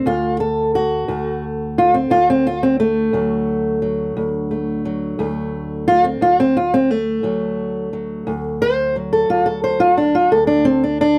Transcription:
steel-string acoustic guitar
Already playing: A3
0.06 D2 F4
0.40 A4
0.75 F#4
1.08 D2 A3
1.78 F4
1.94 C4
2.10 D2 F4
2.30 C4
2.47 F4
2.63 C4
2.80 A3
3.13 D2 F#3
3.82 F#3
4.17 D2
4.51 A3
4.85 F#3
5.19 D2 A3
5.88 F4
6.04 C4
6.21 D2 F4
6.40 C4
6.57 F4
6.74 C4
6.91 A3
7.23 D2 F#3
7.93 F#3
8.27 D2
8.62 C5
8.96 F#3
9.13 A4
9.29 D2 F4
9.46 A4
9.64 C5
9.80 F4
9.97 D4
10.15 F4
10.32 D2 A4
10.47 D4
10.65 C4
10.84 D4
11.01 D4

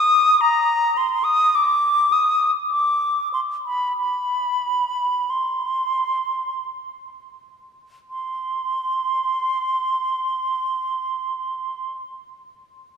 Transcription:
flute
Already playing: D#6
0.41 A#5
0.97 C6
1.24 D#6
1.55 D6
2.12 D#6
2.70 D6
3.34 C6
3.65 B5
3.97 B5
5.30 C6
8.09 C6

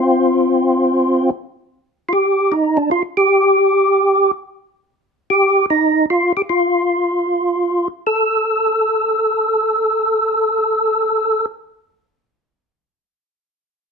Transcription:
tonewheel organ
Already playing: C4 F4
2.09 F4
2.13 G4
2.52 D#4
2.77 D4
2.91 F4
3.17 G4
5.30 G4
5.70 D#4
6.10 F4
6.37 G4
6.49 F4
8.07 A4

